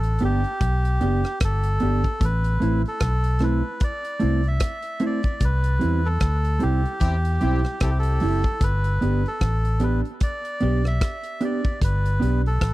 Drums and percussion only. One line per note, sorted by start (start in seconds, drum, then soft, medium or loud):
0.03 closed hi-hat medium
0.19 closed hi-hat medium
0.44 closed hi-hat soft
0.61 kick loud
0.61 closed hi-hat medium
0.85 closed hi-hat medium
1.01 closed hi-hat medium
1.24 cross-stick medium
1.24 closed hi-hat soft
1.40 kick loud
1.40 cross-stick loud
1.40 closed hi-hat loud
1.64 closed hi-hat medium
1.80 closed hi-hat medium
2.04 kick medium
2.04 closed hi-hat soft
2.21 kick loud
2.21 closed hi-hat medium
2.44 closed hi-hat medium
2.62 closed hi-hat medium
2.86 closed hi-hat soft
3.00 kick loud
3.00 cross-stick loud
3.00 closed hi-hat medium
3.24 closed hi-hat medium
3.39 cross-stick medium
3.39 closed hi-hat medium
3.80 kick loud
3.80 closed hi-hat medium
4.05 closed hi-hat medium
4.20 closed hi-hat medium
4.44 closed hi-hat soft
4.60 kick loud
4.60 cross-stick loud
4.60 closed hi-hat loud
4.83 closed hi-hat medium
5.00 closed hi-hat medium
5.23 kick loud
5.23 closed hi-hat soft
5.40 kick loud
5.40 closed hi-hat loud
5.64 closed hi-hat medium
5.81 closed hi-hat medium
6.20 kick loud
6.20 cross-stick loud
6.20 closed hi-hat medium
6.45 closed hi-hat medium
6.60 closed hi-hat medium
6.86 closed hi-hat soft
7.01 kick loud
7.01 closed hi-hat medium
7.25 closed hi-hat medium
7.41 closed hi-hat medium
7.64 cross-stick medium
7.64 closed hi-hat soft
7.80 kick loud
7.80 cross-stick loud
7.80 closed hi-hat loud
8.03 closed hi-hat medium
8.20 open hi-hat medium
8.44 kick medium
8.44 closed hi-hat soft
8.61 kick loud
8.61 closed hi-hat loud
8.84 closed hi-hat medium
9.02 closed hi-hat medium
9.26 closed hi-hat soft
9.41 kick loud
9.41 cross-stick medium
9.41 closed hi-hat medium
9.65 closed hi-hat medium
9.80 closed hi-hat medium
10.05 closed hi-hat soft
10.20 kick loud
10.20 closed hi-hat medium
10.45 closed hi-hat medium
10.61 closed hi-hat medium
10.84 cross-stick medium
10.84 closed hi-hat soft
11.01 kick loud
11.01 cross-stick loud
11.01 closed hi-hat loud
11.24 closed hi-hat medium
11.41 closed hi-hat medium
11.64 kick loud
11.64 closed hi-hat soft
11.81 kick loud
11.81 closed hi-hat loud
12.06 closed hi-hat medium
12.22 closed hi-hat medium
12.46 closed hi-hat soft
12.61 kick loud
12.61 cross-stick loud
12.61 closed hi-hat medium